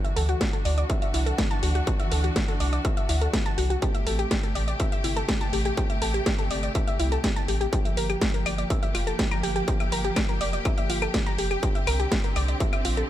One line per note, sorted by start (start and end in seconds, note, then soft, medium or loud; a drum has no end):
0.00 3.78 E3 medium
0.00 3.78 D4 medium
0.00 3.78 F#4 medium
0.04 0.16 E5 medium
0.04 0.16 E6 medium
0.04 closed hi-hat soft
0.16 0.35 D2 loud
0.16 0.28 A4 loud
0.16 0.28 A5 medium
0.16 open hi-hat loud
0.29 0.37 F#4 loud
0.29 0.37 F#5 medium
0.29 closed hi-hat soft
0.41 0.46 F#4 medium
0.41 0.46 F#5 medium
0.41 kick loud
0.41 snare loud
0.41 closed hi-hat medium
0.53 0.58 A4 medium
0.53 0.58 A5 medium
0.53 closed hi-hat soft
0.65 0.84 D2 loud
0.65 0.74 D5 loud
0.65 0.74 D6 medium
0.65 open hi-hat medium
0.78 0.83 D5 medium
0.78 0.83 D6 medium
0.78 closed hi-hat soft
0.90 0.98 E5 medium
0.90 0.98 E6 medium
0.90 kick loud
0.90 closed hi-hat medium
1.02 1.13 E5 loud
1.02 1.13 E6 medium
1.02 closed hi-hat soft
1.14 1.33 C2 medium
1.14 1.26 E4 loud
1.14 1.26 E5 medium
1.14 open hi-hat loud
1.26 1.34 A4 loud
1.26 1.34 A5 medium
1.26 closed hi-hat soft
1.38 1.43 F#4 medium
1.38 1.43 F#5 medium
1.38 kick loud
1.38 snare loud
1.38 closed hi-hat medium
1.51 1.59 A5 loud
1.51 1.59 A6 medium
1.51 closed hi-hat soft
1.63 1.81 D2 medium
1.63 1.68 F#4 loud
1.63 1.68 F#5 medium
1.63 open hi-hat loud
1.75 1.80 F#4 loud
1.75 1.80 F#5 medium
1.75 closed hi-hat soft
1.87 1.95 F#4 medium
1.87 1.95 F#5 medium
1.87 kick loud
1.87 closed hi-hat medium
2.00 2.11 E5 medium
2.00 2.11 E6 medium
2.00 closed hi-hat soft
2.12 2.30 D2 medium
2.12 2.23 A4 loud
2.12 2.23 A5 medium
2.12 open hi-hat loud
2.24 2.32 F#4 loud
2.24 2.32 F#5 medium
2.24 closed hi-hat soft
2.36 2.41 F#4 medium
2.36 2.41 F#5 medium
2.36 kick loud
2.36 snare loud
2.36 closed hi-hat medium
2.48 2.53 A4 medium
2.48 2.53 A5 medium
2.48 closed hi-hat soft
2.60 2.79 C2 medium
2.60 2.69 D5 loud
2.60 2.69 D6 medium
2.60 open hi-hat medium
2.73 2.78 D5 medium
2.73 2.78 D6 medium
2.73 closed hi-hat soft
2.85 2.93 E5 medium
2.85 2.93 E6 medium
2.85 kick loud
2.85 closed hi-hat medium
2.97 3.08 E5 loud
2.97 3.09 E6 medium
2.97 closed hi-hat soft
3.09 3.28 D2 medium
3.09 3.21 E4 loud
3.09 3.21 E5 medium
3.09 open hi-hat loud
3.21 3.30 A4 loud
3.21 3.30 A5 medium
3.21 closed hi-hat soft
3.33 3.39 F#4 medium
3.33 3.39 F#5 medium
3.33 kick loud
3.33 snare loud
3.33 closed hi-hat medium
3.46 3.54 A5 loud
3.46 3.54 A6 medium
3.46 closed hi-hat soft
3.58 3.77 C2 medium
3.58 3.63 F#4 loud
3.58 3.63 F#5 medium
3.58 open hi-hat medium
3.70 3.75 F#4 loud
3.70 3.75 F#5 medium
3.70 closed hi-hat soft
3.82 7.69 C3 medium
3.82 7.69 A3 medium
3.82 3.91 G4 medium
3.82 7.69 G4 medium
3.82 3.91 G5 medium
3.82 kick loud
3.82 closed hi-hat medium
3.94 4.06 E5 medium
3.94 4.06 E6 medium
3.94 closed hi-hat soft
4.07 4.25 A1 loud
4.07 4.18 A4 loud
4.07 4.18 A5 medium
4.07 open hi-hat loud
4.19 4.27 G4 loud
4.19 4.27 G5 medium
4.19 closed hi-hat soft
4.31 4.36 G4 medium
4.31 4.36 G5 medium
4.31 kick loud
4.31 snare loud
4.31 closed hi-hat medium
4.43 4.48 A4 medium
4.43 4.48 A5 medium
4.43 closed hi-hat soft
4.55 4.74 A1 loud
4.55 4.64 D5 loud
4.55 4.64 D6 medium
4.55 open hi-hat medium
4.68 4.73 D5 medium
4.68 4.73 D6 medium
4.68 closed hi-hat soft
4.80 4.88 E5 medium
4.80 4.88 E6 medium
4.80 kick loud
4.80 closed hi-hat medium
4.92 5.03 E5 loud
4.92 5.04 E6 medium
4.92 closed hi-hat soft
5.04 5.23 G1 medium
5.04 5.16 E4 loud
5.04 5.16 E5 medium
5.04 open hi-hat loud
5.17 5.25 A4 loud
5.17 5.25 A5 medium
5.17 closed hi-hat soft
5.28 5.34 G4 medium
5.28 5.34 G5 medium
5.28 kick loud
5.28 snare loud
5.28 closed hi-hat medium
5.41 5.49 A5 loud
5.41 5.49 A6 medium
5.41 closed hi-hat soft
5.53 5.72 A1 medium
5.53 5.58 G4 loud
5.53 5.58 G5 medium
5.53 open hi-hat medium
5.65 5.70 G4 loud
5.65 5.70 G5 medium
5.65 closed hi-hat soft
5.77 5.86 G4 medium
5.77 5.86 G5 medium
5.77 kick loud
5.77 closed hi-hat medium
5.90 6.01 E5 medium
5.90 6.01 E6 medium
5.90 closed hi-hat soft
6.02 6.21 A1 medium
6.02 6.14 A4 loud
6.02 6.14 A5 medium
6.02 open hi-hat loud
6.14 6.22 G4 loud
6.14 6.22 G5 medium
6.14 closed hi-hat soft
6.26 6.31 G4 medium
6.26 6.31 G5 medium
6.26 kick loud
6.26 snare loud
6.26 closed hi-hat medium
6.39 6.43 A4 medium
6.39 6.43 A5 medium
6.39 closed hi-hat soft
6.51 6.69 G1 medium
6.51 6.59 D5 loud
6.51 6.59 D6 medium
6.51 open hi-hat medium
6.63 6.68 D5 medium
6.63 6.68 D6 medium
6.63 closed hi-hat soft
6.75 6.83 E5 medium
6.75 6.83 E6 medium
6.75 kick loud
6.75 closed hi-hat medium
6.87 6.98 E5 loud
6.87 6.99 E6 medium
6.87 closed hi-hat soft
6.99 7.18 C2 medium
6.99 7.11 E4 loud
6.99 7.11 E5 medium
6.99 open hi-hat loud
7.12 7.20 A4 loud
7.12 7.20 A5 medium
7.12 closed hi-hat soft
7.24 7.29 G4 medium
7.24 7.29 G5 medium
7.24 kick loud
7.24 snare loud
7.24 closed hi-hat medium
7.36 7.44 A5 loud
7.36 7.44 A6 medium
7.36 closed hi-hat soft
7.48 7.67 A1 medium
7.48 7.53 G4 loud
7.48 7.53 G5 medium
7.48 open hi-hat medium
7.61 7.65 G4 loud
7.61 7.65 G5 medium
7.61 closed hi-hat soft
7.73 11.59 F3 medium
7.73 11.59 A#3 medium
7.73 7.81 G4 medium
7.73 13.10 G4 medium
7.73 7.81 G5 medium
7.73 kick loud
7.73 closed hi-hat medium
7.85 7.96 E5 medium
7.85 7.96 E6 medium
7.85 closed hi-hat soft
7.97 8.16 G1 loud
7.97 8.09 A#4 loud
7.97 8.09 A#5 medium
7.97 open hi-hat loud
8.10 8.18 G4 loud
8.10 8.18 G5 medium
8.10 closed hi-hat soft
8.10 claves medium
8.21 8.26 G4 medium
8.21 8.26 G5 medium
8.21 kick loud
8.21 snare loud
8.21 closed hi-hat medium
8.34 8.39 A#4 medium
8.34 8.39 A#5 medium
8.34 closed hi-hat soft
8.46 8.64 G1 loud
8.46 8.54 D5 loud
8.46 8.54 D6 medium
8.46 open hi-hat medium
8.46 claves medium
8.58 8.63 D5 medium
8.58 8.63 D6 medium
8.58 closed hi-hat soft
8.70 8.78 E5 medium
8.70 8.78 E6 medium
8.70 kick loud
8.70 closed hi-hat medium
8.83 8.94 E5 loud
8.83 8.94 E6 medium
8.83 closed hi-hat soft
8.95 9.13 F1 medium
8.95 9.06 F4 loud
8.95 9.06 F5 medium
8.95 open hi-hat loud
8.95 claves medium
9.07 9.15 A4 loud
9.07 9.15 A5 medium
9.07 closed hi-hat soft
9.19 9.24 G4 medium
9.19 9.24 G5 medium
9.19 kick loud
9.19 snare loud
9.19 closed hi-hat medium
9.31 9.39 A#5 loud
9.31 9.39 A#6 medium
9.31 closed hi-hat soft
9.31 claves medium
9.43 9.62 G1 medium
9.43 9.48 G4 loud
9.43 9.48 G5 medium
9.43 open hi-hat medium
9.56 9.61 G4 loud
9.56 9.61 G5 medium
9.56 closed hi-hat soft
9.68 9.76 G4 medium
9.68 9.76 G5 medium
9.68 kick loud
9.68 closed hi-hat medium
9.80 9.92 E5 medium
9.80 9.92 E6 medium
9.80 closed hi-hat soft
9.80 claves medium
9.92 10.11 G1 medium
9.92 10.04 A#4 loud
9.92 10.04 A#5 medium
9.92 open hi-hat loud
10.04 10.13 G4 loud
10.04 10.13 G5 medium
10.04 closed hi-hat soft
10.16 10.22 G4 medium
10.16 10.22 G5 medium
10.16 kick loud
10.16 snare loud
10.16 closed hi-hat medium
10.16 claves medium
10.29 10.34 A#4 medium
10.29 10.34 A#5 medium
10.29 closed hi-hat soft
10.41 10.59 F1 medium
10.41 10.49 D5 loud
10.41 10.49 D6 medium
10.41 open hi-hat loud
10.53 10.58 D5 medium
10.53 10.58 D6 medium
10.53 closed hi-hat soft
10.65 10.74 E5 medium
10.65 10.74 E6 medium
10.65 kick loud
10.65 closed hi-hat medium
10.65 claves medium
10.78 10.89 E5 medium
10.78 10.89 E6 medium
10.78 closed hi-hat soft
10.90 11.08 G1 medium
10.90 11.01 F4 loud
10.90 11.01 F5 medium
10.90 open hi-hat loud
11.02 11.10 A4 loud
11.02 11.10 A5 medium
11.02 closed hi-hat soft
11.02 claves medium
11.14 11.19 G4 medium
11.14 11.19 G5 medium
11.14 kick loud
11.14 snare loud
11.14 closed hi-hat medium
11.26 11.34 A#5 loud
11.26 11.35 A#6 medium
11.26 closed hi-hat soft
11.38 11.57 F1 medium
11.38 11.43 G4 loud
11.38 11.43 G5 medium
11.38 open hi-hat loud
11.51 11.56 G4 loud
11.51 11.56 G5 medium
11.51 closed hi-hat soft
11.51 claves medium
11.63 13.10 D3 medium
11.63 13.10 C4 medium
11.63 11.71 G4 medium
11.63 11.71 G5 medium
11.63 kick loud
11.63 closed hi-hat medium
11.75 11.87 E5 medium
11.75 11.87 E6 medium
11.75 closed hi-hat soft
11.87 12.06 C2 loud
11.87 11.99 A#4 loud
11.87 11.99 A#5 medium
11.87 open hi-hat loud
11.87 claves medium
12.00 12.08 G4 loud
12.00 12.08 G5 medium
12.00 closed hi-hat soft
12.12 12.17 G4 medium
12.12 12.17 G5 medium
12.12 kick loud
12.12 snare loud
12.12 closed hi-hat medium
12.24 12.29 A#4 medium
12.24 12.29 A#5 medium
12.24 closed hi-hat soft
12.36 12.55 C2 medium
12.36 12.44 D5 loud
12.36 12.44 D6 medium
12.36 open hi-hat medium
12.36 claves medium
12.48 12.53 D5 medium
12.48 12.53 D6 medium
12.48 closed hi-hat soft
12.60 12.69 E5 medium
12.60 12.69 E6 medium
12.60 kick loud
12.60 closed hi-hat medium
12.73 12.84 E5 loud
12.73 12.84 E6 medium
12.73 closed hi-hat soft
12.73 claves medium
12.85 13.03 A#1 medium
12.85 12.97 F4 loud
12.85 12.97 F5 medium
12.85 open hi-hat loud
12.97 13.05 A4 loud
12.97 13.05 A5 medium
12.97 closed hi-hat soft